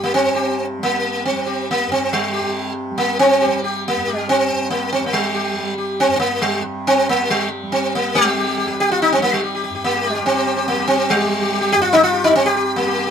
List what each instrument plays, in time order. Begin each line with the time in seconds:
Already playing: tanpura G2 C3 G3, sitar G4
0.04 sitar A#3
0.14 sitar C4
0.25 tanpura C3
0.35 sitar G4
0.79 tanpura G3
0.83 sitar A#3
1.25 sitar C4
1.32 tanpura G3
1.46 sitar G4
1.71 sitar A#3
1.87 tanpura G2
1.92 sitar C4
2.13 sitar G3
2.33 sitar G4
2.40 tanpura C3
2.91 tanpura G3
2.98 sitar A#3
3.19 sitar C4
3.41 tanpura G3, sitar G4
3.64 sitar G4
3.88 sitar A#3
3.96 tanpura G2
4.07 sitar G4
4.16 sitar G3
4.29 sitar C4
4.50 tanpura C3
4.70 sitar A#3
4.92 sitar C4
4.99 tanpura G3
5.06 sitar A#3
5.13 sitar G3
5.35 sitar G4
5.53 tanpura G3
5.78 sitar G4
6.00 sitar C4
6.08 tanpura G2
6.16 sitar A#3 C4
6.42 sitar G3
6.61 tanpura C3
6.87 sitar C4
7.09 tanpura G3, sitar A#3
7.30 sitar G3
7.63 tanpura G3
7.72 sitar C4
7.95 sitar A#3
8.14 tanpura C3, sitar G3 G4
8.25 sitar G4
8.38 sitar G4
8.47 sitar G4
8.58 sitar G4
8.66 tanpura G3, sitar G4
8.80 sitar G4
8.91 sitar F4
9.02 sitar D#4
9.12 sitar C4
9.18 tanpura G3
9.22 sitar A#3
9.33 sitar G3
9.44 sitar G4
9.55 sitar G4
9.63 sitar G4
9.70 tanpura G2
9.75 sitar G4
9.84 sitar A#3
9.95 sitar G4
10.04 sitar G4
10.12 sitar G3 G4
10.20 tanpura C3
10.26 sitar C4
10.34 sitar G4
10.46 sitar G4
10.57 sitar G4
10.68 sitar A#3
10.73 tanpura G3
10.79 sitar G4
10.88 sitar C4
10.97 sitar G4
11.10 sitar G3
11.21 tanpura G3, sitar G4
11.42 sitar G4
11.53 sitar G4
11.61 sitar G4
11.72 tanpura G2, sitar G4
11.82 sitar F4
11.93 sitar D#4
12.03 sitar F4
12.13 sitar G4
12.24 tanpura C3, sitar D#4
12.36 sitar C4
12.46 sitar G4
12.56 sitar G4
12.76 tanpura G3, sitar A#3
12.87 sitar G4
12.98 sitar G4
13.07 sitar G4